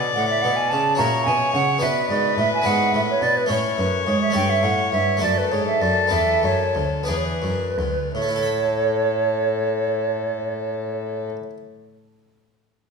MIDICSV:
0, 0, Header, 1, 5, 480
1, 0, Start_track
1, 0, Key_signature, 3, "major"
1, 0, Tempo, 558140
1, 855, Time_signature, 6, 3, 24, 8
1, 3742, Tempo, 589391
1, 5182, Tempo, 654308
1, 6142, Tempo, 713436
1, 9824, End_track
2, 0, Start_track
2, 0, Title_t, "Flute"
2, 0, Program_c, 0, 73
2, 128, Note_on_c, 0, 78, 79
2, 248, Note_off_c, 0, 78, 0
2, 253, Note_on_c, 0, 76, 64
2, 358, Note_on_c, 0, 78, 67
2, 370, Note_off_c, 0, 76, 0
2, 483, Note_on_c, 0, 80, 69
2, 496, Note_off_c, 0, 78, 0
2, 602, Note_on_c, 0, 81, 80
2, 615, Note_off_c, 0, 80, 0
2, 831, Note_off_c, 0, 81, 0
2, 837, Note_on_c, 0, 82, 75
2, 1075, Note_off_c, 0, 82, 0
2, 1080, Note_on_c, 0, 80, 77
2, 1319, Note_off_c, 0, 80, 0
2, 1325, Note_on_c, 0, 78, 72
2, 1558, Note_off_c, 0, 78, 0
2, 1563, Note_on_c, 0, 76, 64
2, 1799, Note_off_c, 0, 76, 0
2, 1803, Note_on_c, 0, 74, 64
2, 2041, Note_off_c, 0, 74, 0
2, 2051, Note_on_c, 0, 76, 74
2, 2167, Note_off_c, 0, 76, 0
2, 2182, Note_on_c, 0, 80, 68
2, 2284, Note_on_c, 0, 78, 79
2, 2297, Note_off_c, 0, 80, 0
2, 2528, Note_off_c, 0, 78, 0
2, 2540, Note_on_c, 0, 76, 70
2, 2592, Note_off_c, 0, 76, 0
2, 2666, Note_on_c, 0, 73, 67
2, 2775, Note_on_c, 0, 74, 75
2, 2788, Note_off_c, 0, 73, 0
2, 2901, Note_on_c, 0, 71, 66
2, 2914, Note_off_c, 0, 74, 0
2, 3014, Note_off_c, 0, 71, 0
2, 3019, Note_on_c, 0, 73, 57
2, 3073, Note_off_c, 0, 73, 0
2, 3255, Note_on_c, 0, 71, 57
2, 3492, Note_off_c, 0, 71, 0
2, 3505, Note_on_c, 0, 73, 71
2, 3621, Note_off_c, 0, 73, 0
2, 3628, Note_on_c, 0, 76, 72
2, 3739, Note_off_c, 0, 76, 0
2, 3744, Note_on_c, 0, 79, 81
2, 3862, Note_on_c, 0, 76, 69
2, 3874, Note_off_c, 0, 79, 0
2, 3976, Note_on_c, 0, 78, 68
2, 3988, Note_off_c, 0, 76, 0
2, 4204, Note_off_c, 0, 78, 0
2, 4209, Note_on_c, 0, 76, 73
2, 4441, Note_off_c, 0, 76, 0
2, 4454, Note_on_c, 0, 74, 65
2, 4580, Note_on_c, 0, 71, 61
2, 4592, Note_off_c, 0, 74, 0
2, 4692, Note_on_c, 0, 73, 61
2, 4704, Note_off_c, 0, 71, 0
2, 4808, Note_off_c, 0, 73, 0
2, 4812, Note_on_c, 0, 76, 65
2, 4935, Note_on_c, 0, 74, 64
2, 4947, Note_off_c, 0, 76, 0
2, 5187, Note_on_c, 0, 76, 68
2, 5198, Note_off_c, 0, 74, 0
2, 5426, Note_on_c, 0, 73, 70
2, 5437, Note_off_c, 0, 76, 0
2, 5727, Note_off_c, 0, 73, 0
2, 5897, Note_on_c, 0, 71, 44
2, 5954, Note_on_c, 0, 73, 35
2, 5965, Note_off_c, 0, 71, 0
2, 6015, Note_on_c, 0, 71, 47
2, 6026, Note_off_c, 0, 73, 0
2, 6627, Note_off_c, 0, 71, 0
2, 6631, Note_on_c, 0, 73, 61
2, 8745, Note_off_c, 0, 73, 0
2, 9824, End_track
3, 0, Start_track
3, 0, Title_t, "Violin"
3, 0, Program_c, 1, 40
3, 0, Note_on_c, 1, 74, 57
3, 854, Note_off_c, 1, 74, 0
3, 858, Note_on_c, 1, 73, 67
3, 1575, Note_on_c, 1, 71, 69
3, 1588, Note_off_c, 1, 73, 0
3, 3008, Note_off_c, 1, 71, 0
3, 3013, Note_on_c, 1, 73, 63
3, 4448, Note_on_c, 1, 69, 64
3, 4461, Note_off_c, 1, 73, 0
3, 5889, Note_off_c, 1, 69, 0
3, 5894, Note_on_c, 1, 68, 47
3, 6256, Note_off_c, 1, 68, 0
3, 6630, Note_on_c, 1, 69, 43
3, 8744, Note_off_c, 1, 69, 0
3, 9824, End_track
4, 0, Start_track
4, 0, Title_t, "Harpsichord"
4, 0, Program_c, 2, 6
4, 0, Note_on_c, 2, 47, 43
4, 0, Note_on_c, 2, 66, 35
4, 0, Note_on_c, 2, 69, 40
4, 117, Note_off_c, 2, 47, 0
4, 138, Note_on_c, 2, 45, 43
4, 353, Note_off_c, 2, 45, 0
4, 380, Note_on_c, 2, 47, 47
4, 594, Note_off_c, 2, 47, 0
4, 615, Note_on_c, 2, 49, 50
4, 804, Note_off_c, 2, 66, 0
4, 811, Note_off_c, 2, 69, 0
4, 817, Note_on_c, 2, 61, 42
4, 830, Note_off_c, 2, 49, 0
4, 831, Note_on_c, 2, 64, 42
4, 843, Note_on_c, 2, 66, 43
4, 856, Note_on_c, 2, 46, 47
4, 1069, Note_off_c, 2, 46, 0
4, 1091, Note_on_c, 2, 47, 43
4, 1306, Note_off_c, 2, 47, 0
4, 1332, Note_on_c, 2, 49, 44
4, 1527, Note_off_c, 2, 61, 0
4, 1534, Note_off_c, 2, 64, 0
4, 1534, Note_on_c, 2, 59, 46
4, 1540, Note_off_c, 2, 66, 0
4, 1544, Note_on_c, 2, 62, 42
4, 1545, Note_off_c, 2, 49, 0
4, 1555, Note_on_c, 2, 66, 41
4, 1570, Note_on_c, 2, 47, 52
4, 1783, Note_off_c, 2, 47, 0
4, 1811, Note_on_c, 2, 44, 43
4, 2026, Note_off_c, 2, 44, 0
4, 2047, Note_on_c, 2, 45, 53
4, 2242, Note_off_c, 2, 59, 0
4, 2252, Note_on_c, 2, 59, 44
4, 2253, Note_off_c, 2, 62, 0
4, 2261, Note_off_c, 2, 66, 0
4, 2263, Note_on_c, 2, 62, 38
4, 2265, Note_off_c, 2, 45, 0
4, 2277, Note_on_c, 2, 64, 41
4, 2291, Note_on_c, 2, 44, 44
4, 2508, Note_off_c, 2, 44, 0
4, 2532, Note_on_c, 2, 45, 45
4, 2749, Note_off_c, 2, 45, 0
4, 2771, Note_on_c, 2, 47, 40
4, 2973, Note_off_c, 2, 59, 0
4, 2978, Note_on_c, 2, 57, 46
4, 2979, Note_off_c, 2, 62, 0
4, 2986, Note_off_c, 2, 64, 0
4, 2989, Note_off_c, 2, 47, 0
4, 2994, Note_on_c, 2, 61, 43
4, 3007, Note_on_c, 2, 64, 42
4, 3019, Note_on_c, 2, 45, 46
4, 3234, Note_off_c, 2, 45, 0
4, 3255, Note_on_c, 2, 42, 49
4, 3473, Note_off_c, 2, 42, 0
4, 3496, Note_on_c, 2, 44, 45
4, 3689, Note_off_c, 2, 57, 0
4, 3699, Note_on_c, 2, 57, 42
4, 3705, Note_off_c, 2, 61, 0
4, 3715, Note_on_c, 2, 61, 42
4, 3716, Note_off_c, 2, 44, 0
4, 3716, Note_off_c, 2, 64, 0
4, 3727, Note_on_c, 2, 69, 44
4, 3739, Note_on_c, 2, 43, 45
4, 3949, Note_off_c, 2, 43, 0
4, 3970, Note_on_c, 2, 45, 40
4, 4182, Note_off_c, 2, 45, 0
4, 4207, Note_on_c, 2, 43, 47
4, 4400, Note_off_c, 2, 57, 0
4, 4410, Note_on_c, 2, 57, 42
4, 4412, Note_off_c, 2, 61, 0
4, 4418, Note_off_c, 2, 69, 0
4, 4422, Note_off_c, 2, 43, 0
4, 4422, Note_on_c, 2, 62, 37
4, 4434, Note_on_c, 2, 69, 45
4, 4449, Note_on_c, 2, 42, 41
4, 4662, Note_off_c, 2, 57, 0
4, 4665, Note_off_c, 2, 42, 0
4, 4691, Note_on_c, 2, 44, 48
4, 4910, Note_off_c, 2, 44, 0
4, 4935, Note_on_c, 2, 42, 40
4, 5145, Note_on_c, 2, 59, 40
4, 5147, Note_off_c, 2, 62, 0
4, 5154, Note_off_c, 2, 69, 0
4, 5157, Note_on_c, 2, 62, 35
4, 5159, Note_off_c, 2, 42, 0
4, 5168, Note_on_c, 2, 69, 39
4, 5182, Note_on_c, 2, 40, 43
4, 5388, Note_off_c, 2, 59, 0
4, 5390, Note_off_c, 2, 40, 0
4, 5412, Note_on_c, 2, 42, 40
4, 5624, Note_off_c, 2, 42, 0
4, 5644, Note_on_c, 2, 38, 40
4, 5854, Note_on_c, 2, 59, 38
4, 5857, Note_off_c, 2, 62, 0
4, 5862, Note_off_c, 2, 69, 0
4, 5863, Note_off_c, 2, 38, 0
4, 5867, Note_on_c, 2, 62, 37
4, 5877, Note_on_c, 2, 68, 37
4, 5889, Note_on_c, 2, 40, 39
4, 6115, Note_off_c, 2, 59, 0
4, 6116, Note_off_c, 2, 40, 0
4, 6135, Note_on_c, 2, 42, 36
4, 6357, Note_off_c, 2, 42, 0
4, 6384, Note_on_c, 2, 38, 38
4, 6597, Note_off_c, 2, 62, 0
4, 6602, Note_off_c, 2, 68, 0
4, 6605, Note_off_c, 2, 38, 0
4, 6627, Note_on_c, 2, 45, 41
4, 6675, Note_on_c, 2, 57, 35
4, 6719, Note_on_c, 2, 64, 38
4, 6769, Note_on_c, 2, 69, 41
4, 6815, Note_on_c, 2, 76, 39
4, 8742, Note_off_c, 2, 45, 0
4, 8789, Note_off_c, 2, 57, 0
4, 8834, Note_off_c, 2, 64, 0
4, 8883, Note_off_c, 2, 69, 0
4, 8929, Note_off_c, 2, 76, 0
4, 9824, End_track
5, 0, Start_track
5, 0, Title_t, "Cello"
5, 0, Program_c, 3, 42
5, 0, Note_on_c, 3, 47, 49
5, 136, Note_off_c, 3, 47, 0
5, 144, Note_on_c, 3, 45, 53
5, 380, Note_on_c, 3, 47, 49
5, 393, Note_off_c, 3, 45, 0
5, 622, Note_on_c, 3, 49, 53
5, 635, Note_off_c, 3, 47, 0
5, 848, Note_off_c, 3, 49, 0
5, 854, Note_on_c, 3, 46, 66
5, 1075, Note_off_c, 3, 46, 0
5, 1090, Note_on_c, 3, 47, 63
5, 1312, Note_off_c, 3, 47, 0
5, 1325, Note_on_c, 3, 49, 60
5, 1548, Note_off_c, 3, 49, 0
5, 1565, Note_on_c, 3, 47, 59
5, 1788, Note_off_c, 3, 47, 0
5, 1800, Note_on_c, 3, 44, 56
5, 2027, Note_off_c, 3, 44, 0
5, 2043, Note_on_c, 3, 45, 60
5, 2270, Note_off_c, 3, 45, 0
5, 2284, Note_on_c, 3, 44, 72
5, 2511, Note_off_c, 3, 44, 0
5, 2528, Note_on_c, 3, 45, 61
5, 2754, Note_off_c, 3, 45, 0
5, 2768, Note_on_c, 3, 47, 59
5, 2995, Note_off_c, 3, 47, 0
5, 3008, Note_on_c, 3, 45, 57
5, 3235, Note_off_c, 3, 45, 0
5, 3254, Note_on_c, 3, 42, 60
5, 3480, Note_off_c, 3, 42, 0
5, 3500, Note_on_c, 3, 44, 58
5, 3726, Note_off_c, 3, 44, 0
5, 3743, Note_on_c, 3, 43, 66
5, 3959, Note_off_c, 3, 43, 0
5, 3970, Note_on_c, 3, 45, 58
5, 4190, Note_off_c, 3, 45, 0
5, 4213, Note_on_c, 3, 43, 56
5, 4432, Note_off_c, 3, 43, 0
5, 4448, Note_on_c, 3, 42, 50
5, 4672, Note_off_c, 3, 42, 0
5, 4692, Note_on_c, 3, 44, 51
5, 4918, Note_off_c, 3, 44, 0
5, 4933, Note_on_c, 3, 42, 55
5, 5165, Note_off_c, 3, 42, 0
5, 5184, Note_on_c, 3, 40, 57
5, 5398, Note_off_c, 3, 40, 0
5, 5415, Note_on_c, 3, 42, 55
5, 5633, Note_off_c, 3, 42, 0
5, 5654, Note_on_c, 3, 38, 53
5, 5876, Note_off_c, 3, 38, 0
5, 5891, Note_on_c, 3, 40, 52
5, 6124, Note_off_c, 3, 40, 0
5, 6143, Note_on_c, 3, 42, 47
5, 6368, Note_off_c, 3, 42, 0
5, 6381, Note_on_c, 3, 38, 51
5, 6610, Note_off_c, 3, 38, 0
5, 6629, Note_on_c, 3, 45, 52
5, 8743, Note_off_c, 3, 45, 0
5, 9824, End_track
0, 0, End_of_file